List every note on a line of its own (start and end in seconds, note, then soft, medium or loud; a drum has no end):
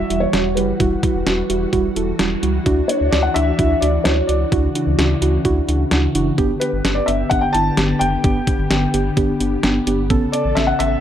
0.00 6.34 E3 medium
0.00 2.62 G3 medium
0.00 6.34 F#4 medium
0.00 0.19 E5 loud
0.10 0.26 E1 medium
0.10 0.25 G3 medium
0.10 0.25 E4 medium
0.10 0.25 F#4 medium
0.10 closed hi-hat medium
0.20 0.53 C#5 medium
0.33 0.58 E1 loud
0.33 0.48 G3 medium
0.33 0.48 E4 medium
0.33 0.48 F#4 medium
0.33 snare loud
0.33 closed hi-hat medium
0.55 0.73 F#1 medium
0.55 0.71 G3 medium
0.55 0.71 E4 medium
0.55 0.71 G4 medium
0.55 1.91 B4 medium
0.55 closed hi-hat medium
0.80 0.96 E1 loud
0.80 0.94 G3 medium
0.80 0.94 E4 medium
0.80 0.94 F#4 loud
0.80 kick loud
0.80 closed hi-hat medium
1.03 1.18 G3 medium
1.03 1.18 E4 medium
1.03 1.18 F#4 medium
1.03 kick medium
1.03 closed hi-hat medium
1.15 1.23 E1 medium
1.26 1.43 E1 loud
1.26 1.41 G3 medium
1.26 1.41 E4 medium
1.26 1.41 F#4 loud
1.26 snare loud
1.26 closed hi-hat medium
1.50 1.66 E1 loud
1.50 1.64 G3 medium
1.50 1.64 E4 medium
1.50 1.64 F#4 medium
1.50 closed hi-hat medium
1.73 1.89 E1 loud
1.73 1.87 G3 loud
1.73 1.87 E4 loud
1.73 1.87 F#4 loud
1.73 kick medium
1.73 closed hi-hat medium
1.96 2.13 E1 loud
1.96 2.11 G3 medium
1.96 2.11 E4 medium
1.96 2.11 A4 medium
1.96 closed hi-hat medium
2.19 2.36 E1 loud
2.19 2.34 G3 medium
2.19 2.34 E4 medium
2.19 2.34 F#4 medium
2.19 snare loud
2.19 closed hi-hat medium
2.43 2.59 C#2 medium
2.43 2.57 G3 medium
2.43 2.57 E4 medium
2.43 2.57 F#4 medium
2.43 closed hi-hat medium
2.66 2.82 D2 loud
2.66 2.80 D4 loud
2.66 4.50 D4 medium
2.66 2.80 E4 loud
2.66 2.80 F#4 loud
2.66 kick loud
2.66 closed hi-hat medium
2.88 3.04 D4 medium
2.88 3.04 E4 medium
2.88 3.04 F#4 medium
2.88 3.10 C#5 medium
2.88 closed hi-hat medium
3.01 3.09 D2 medium
3.11 3.29 D2 loud
3.11 3.27 D4 medium
3.11 3.27 E4 medium
3.11 3.27 F#4 medium
3.11 3.24 D5 medium
3.11 snare loud
3.11 closed hi-hat medium
3.23 3.35 F#5 loud
3.34 3.52 D2 medium
3.34 3.50 D4 medium
3.34 3.50 E4 medium
3.34 3.50 F#4 medium
3.34 3.83 E5 loud
3.34 closed hi-hat medium
3.59 3.75 D2 loud
3.59 3.73 D4 medium
3.59 3.73 E4 medium
3.59 3.73 F#4 loud
3.59 kick medium
3.59 closed hi-hat medium
3.81 3.98 D2 medium
3.81 3.97 D4 medium
3.81 3.97 E4 medium
3.81 3.97 F#4 medium
3.81 4.05 D5 medium
3.81 closed hi-hat medium
4.04 4.22 D2 loud
4.04 4.20 D4 medium
4.04 4.20 E4 medium
4.04 4.20 F#4 medium
4.04 4.29 C#5 medium
4.04 snare loud
4.04 closed hi-hat medium
4.27 4.45 C#2 medium
4.27 4.43 D4 medium
4.27 4.43 E4 medium
4.27 4.43 F#4 medium
4.27 5.64 D5 medium
4.27 closed hi-hat medium
4.52 4.68 D2 loud
4.52 6.36 C#3 medium
4.52 4.66 D4 medium
4.52 4.66 E4 medium
4.52 4.66 F#4 loud
4.52 kick loud
4.52 closed hi-hat medium
4.75 4.90 D4 medium
4.75 4.90 E4 medium
4.75 4.90 F#4 medium
4.75 closed hi-hat medium
4.87 4.95 D2 loud
4.98 5.15 D2 loud
4.98 5.13 D4 medium
4.98 5.13 E4 medium
4.98 5.13 F#4 medium
4.98 snare loud
4.98 closed hi-hat medium
5.22 5.38 D2 loud
5.22 5.36 D4 medium
5.22 5.36 E4 medium
5.22 5.36 F#4 medium
5.22 closed hi-hat medium
5.45 5.61 D2 loud
5.45 5.59 D4 loud
5.45 5.59 E4 loud
5.45 5.59 F#4 loud
5.45 kick medium
5.45 closed hi-hat medium
5.68 5.85 D2 medium
5.68 5.83 D4 medium
5.68 5.83 E4 medium
5.68 5.83 F#4 medium
5.68 closed hi-hat medium
5.91 6.08 D2 loud
5.91 6.06 D4 medium
5.91 6.06 E4 medium
5.91 6.06 F#4 medium
5.91 snare loud
5.91 closed hi-hat medium
6.15 6.31 F#1 medium
6.15 6.29 D4 medium
6.15 6.29 E4 medium
6.15 6.29 F#4 medium
6.15 closed hi-hat medium
6.38 6.54 G1 loud
6.38 10.07 D3 medium
6.38 6.52 B3 loud
6.38 11.01 B3 medium
6.38 6.52 D4 loud
6.38 6.53 G4 loud
6.38 10.07 G4 medium
6.38 kick loud
6.38 closed hi-hat medium
6.60 6.76 B3 medium
6.60 6.76 D4 medium
6.60 6.76 G4 medium
6.60 6.97 B4 medium
6.60 closed hi-hat medium
6.73 6.81 G1 loud
6.85 7.01 G1 loud
6.85 6.99 B3 medium
6.85 6.99 D4 medium
6.85 6.99 G4 medium
6.85 snare loud
6.85 closed hi-hat medium
6.95 7.07 D5 medium
7.06 7.24 G1 loud
7.06 7.22 B3 medium
7.06 7.22 D4 medium
7.06 7.22 G4 medium
7.06 7.31 E5 medium
7.06 closed hi-hat medium
7.30 7.47 G1 medium
7.30 7.46 B3 medium
7.30 7.46 D4 medium
7.30 7.46 G4 loud
7.30 7.42 F#5 loud
7.30 kick medium
7.30 closed hi-hat medium
7.41 7.54 G5 medium
7.53 7.71 G1 loud
7.53 7.69 B3 medium
7.53 7.69 D4 medium
7.53 7.69 E4 medium
7.53 8.01 A5 loud
7.53 closed hi-hat medium
7.77 7.94 G1 loud
7.77 7.92 B3 medium
7.77 7.92 D4 medium
7.77 7.92 G4 medium
7.77 snare medium
7.77 closed hi-hat medium
7.99 8.17 F#1 medium
7.99 8.15 B3 medium
7.99 8.15 D4 medium
7.99 8.15 G4 medium
7.99 9.82 G5 medium
7.99 closed hi-hat medium
8.24 8.40 G1 loud
8.24 8.38 B3 medium
8.24 8.39 D4 medium
8.24 8.38 G4 loud
8.24 kick loud
8.24 closed hi-hat medium
8.47 8.62 B3 medium
8.47 8.62 D4 medium
8.47 8.62 G4 medium
8.47 kick medium
8.47 closed hi-hat medium
8.59 8.67 G1 loud
8.71 8.87 G1 loud
8.71 8.85 B3 medium
8.71 8.85 D4 medium
8.71 8.85 G4 medium
8.71 snare loud
8.71 closed hi-hat medium
8.94 9.10 G1 loud
8.94 9.08 B3 medium
8.94 9.08 D4 medium
8.94 9.08 G4 medium
8.94 closed hi-hat medium
9.17 9.33 G1 loud
9.17 9.31 B3 loud
9.17 9.31 D4 loud
9.17 9.31 G4 loud
9.17 kick medium
9.17 closed hi-hat medium
9.40 9.57 G1 medium
9.40 9.55 B3 medium
9.40 9.55 D4 medium
9.40 9.55 G4 medium
9.40 closed hi-hat medium
9.63 9.80 G1 loud
9.63 9.78 B3 medium
9.63 9.78 D4 medium
9.63 9.78 G4 medium
9.63 snare loud
9.63 closed hi-hat medium
9.87 10.12 G1 medium
9.87 10.01 B3 medium
9.87 10.01 D4 medium
9.87 10.01 G4 medium
9.87 closed hi-hat medium
10.10 10.26 A1 loud
10.10 11.01 C#3 medium
10.10 10.25 B3 loud
10.10 10.25 C#4 loud
10.10 10.25 A4 loud
10.10 11.01 A4 medium
10.10 kick loud
10.10 closed hi-hat medium
10.32 10.48 B3 medium
10.32 10.48 C#4 medium
10.32 10.48 A4 medium
10.32 10.54 D5 medium
10.32 closed hi-hat medium
10.45 10.53 A1 medium
10.55 10.73 A1 loud
10.55 10.71 B3 medium
10.55 10.71 C#4 medium
10.55 10.71 A4 medium
10.55 10.67 E5 medium
10.55 snare loud
10.55 closed hi-hat medium
10.67 10.80 F#5 medium
10.79 10.96 A1 loud
10.79 10.94 B3 medium
10.79 10.94 C#4 medium
10.79 10.94 A4 medium
10.79 11.01 E5 loud
10.79 closed hi-hat medium